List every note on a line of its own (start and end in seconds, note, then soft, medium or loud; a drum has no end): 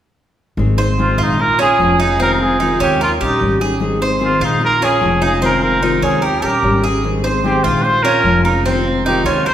0.57 1.14 G#1 medium
0.57 0.77 D#3 medium
0.57 0.77 G#3 medium
0.57 0.78 C4 medium
0.57 0.78 D#4 medium
0.57 0.76 G#4 medium
0.78 0.98 C4 soft
0.78 0.98 D#4 soft
0.78 0.97 G#4 soft
0.78 1.17 C5 medium
0.98 1.37 D#3 medium
0.98 1.38 G#3 medium
0.98 1.38 C4 medium
0.98 1.38 D#4 medium
0.98 1.24 F4 medium
0.98 1.38 G#4 medium
1.18 1.75 A#1 medium
1.18 1.57 F4 medium
1.23 1.42 D#4 medium
1.38 1.60 A#4 medium
1.38 muted nylon-string guitar stroke medium
1.58 1.78 G#3 soft
1.58 1.98 C#4 medium
1.58 1.78 C#4 soft
1.58 1.78 F4 soft
1.58 1.98 G#4 medium
1.78 2.74 F1 medium
1.78 1.98 F3 medium
1.78 1.98 G#3 medium
1.78 1.99 C#4 medium
1.78 1.97 F4 medium
1.98 2.19 G#3 soft
1.98 2.19 C#4 soft
1.98 2.19 D#4 medium
1.98 2.18 F4 soft
1.98 2.19 G#4 medium
2.19 2.39 C3 medium
2.19 2.39 D#3 medium
2.19 2.39 G#3 medium
2.19 2.59 C4 medium
2.19 2.39 C4 medium
2.19 2.38 F4 medium
2.19 2.33 A#4 medium
2.34 2.43 A#4 medium
2.40 2.60 G#3 soft
2.40 2.59 C4 soft
2.40 2.59 F4 soft
2.40 2.81 G#4 medium
2.60 2.99 C3 medium
2.60 2.99 D#3 medium
2.60 3.00 G#3 medium
2.60 3.00 C4 medium
2.60 2.79 D#4 medium
2.60 3.00 F4 medium
2.80 3.18 D#2 medium
2.80 3.00 C#4 medium
2.80 3.00 G4 medium
3.00 3.11 F4 medium
3.00 3.20 A#4 medium
3.00 muted nylon-string guitar stroke soft
3.20 3.39 A#1 medium
3.20 3.39 G3 soft
3.20 3.40 C#4 soft
3.20 3.59 D#4 medium
3.20 3.39 G4 soft
3.20 3.60 G4 medium
3.39 4.36 G#1 medium
3.39 3.59 D#3 medium
3.39 3.60 G3 medium
3.39 3.60 C#4 medium
3.39 3.59 G4 medium
3.60 3.80 G3 soft
3.60 3.80 C#4 soft
3.60 3.80 G4 soft
3.60 4.00 G#4 medium
3.80 4.00 D#3 medium
3.80 4.00 G#3 medium
3.80 4.00 C4 medium
3.80 4.00 D#4 medium
3.80 3.98 G#4 medium
4.00 4.19 C4 soft
4.00 4.20 D#4 soft
4.00 4.20 G#4 soft
4.00 4.41 C5 medium
4.19 4.60 D#3 medium
4.19 4.60 G#3 medium
4.19 4.60 C4 medium
4.19 4.60 D#4 medium
4.19 4.61 G#4 medium
4.25 4.46 F4 medium
4.40 4.97 A#1 medium
4.40 4.80 F4 medium
4.45 4.63 D#4 medium
4.60 muted nylon-string guitar stroke medium
4.64 4.86 A#4 medium
4.81 5.01 G#3 soft
4.81 5.01 C#4 soft
4.81 5.21 C#4 medium
4.81 5.01 F4 soft
4.81 5.23 G#4 medium
5.01 5.97 F1 medium
5.01 5.21 F3 medium
5.01 5.21 G#3 medium
5.01 5.21 C#4 medium
5.01 5.20 F4 medium
5.21 5.41 G#3 soft
5.21 5.41 C#4 soft
5.21 5.41 D#4 medium
5.21 5.41 F4 soft
5.26 5.34 G#4 medium
5.41 5.61 C3 medium
5.41 5.61 D#3 medium
5.41 5.61 G#3 medium
5.41 5.81 C4 medium
5.41 5.62 C4 medium
5.41 5.60 F4 medium
5.41 5.62 A#4 medium
5.61 5.81 G#3 soft
5.61 5.82 C4 soft
5.61 5.81 F4 soft
5.61 6.01 A#4 medium
5.81 6.21 C3 medium
5.81 6.21 D#3 medium
5.81 6.22 G#3 medium
5.81 6.22 C4 medium
5.81 6.02 D#4 medium
5.81 6.22 F4 medium
6.02 6.40 D#2 medium
6.02 6.22 C#4 medium
6.02 6.25 G#4 medium
6.22 6.46 G4 medium
6.22 6.42 A#4 medium
6.22 muted nylon-string guitar stroke soft
6.42 6.62 A#1 medium
6.42 6.62 G3 soft
6.42 6.62 C#4 soft
6.42 6.82 G4 medium
6.42 6.62 G4 soft
6.42 6.84 A#4 medium
6.62 7.58 G#1 medium
6.62 6.82 D#3 medium
6.62 6.83 G3 medium
6.62 6.82 C#4 medium
6.62 6.81 G4 medium
6.82 7.03 G3 soft
6.82 7.03 C#4 soft
6.82 7.02 G4 soft
6.82 7.23 G#4 medium
7.03 7.23 D#3 medium
7.03 7.23 G#3 medium
7.03 7.23 C4 medium
7.03 7.24 D#4 medium
7.03 7.22 G#4 medium
7.24 7.43 C4 soft
7.24 7.44 D#4 soft
7.24 7.43 G#4 soft
7.24 7.63 C5 medium
7.43 7.83 D#3 medium
7.43 7.83 G#3 medium
7.43 7.84 C4 medium
7.43 7.84 D#4 medium
7.43 7.65 G4 medium
7.43 7.84 G#4 medium
7.64 8.21 A#1 medium
7.64 7.85 F4 medium
7.64 8.03 F4 medium
7.83 8.04 C5 loud
7.83 muted nylon-string guitar stroke medium
8.03 8.24 G#3 soft
8.03 8.44 C#4 medium
8.03 8.24 C#4 soft
8.03 8.24 F4 soft
8.03 8.44 A#4 medium
8.24 9.19 F1 medium
8.24 8.44 F3 medium
8.24 8.44 G#3 medium
8.24 8.44 C#4 medium
8.24 8.42 F4 medium
8.44 8.65 G#3 soft
8.44 8.64 C#4 soft
8.44 8.64 D#4 medium
8.44 8.64 F4 soft
8.44 8.63 A#4 medium
8.65 8.84 C3 medium
8.65 8.84 D#3 medium
8.65 8.85 G#3 medium
8.65 9.04 C4 medium
8.65 8.85 C4 medium
8.65 8.84 F4 medium
8.85 9.05 G#3 soft
8.85 9.05 C4 soft
8.85 9.04 F4 soft
9.05 9.45 C3 medium
9.05 9.45 D#3 medium
9.05 9.45 G#3 medium
9.05 9.46 C4 medium
9.05 9.25 D#4 medium
9.05 9.46 F4 medium
9.05 9.25 G4 medium
9.24 9.54 D#2 medium
9.24 9.45 C#4 medium
9.24 9.47 F4 medium
9.46 9.54 A#4 medium
9.46 9.54 C5 medium
9.46 muted nylon-string guitar stroke medium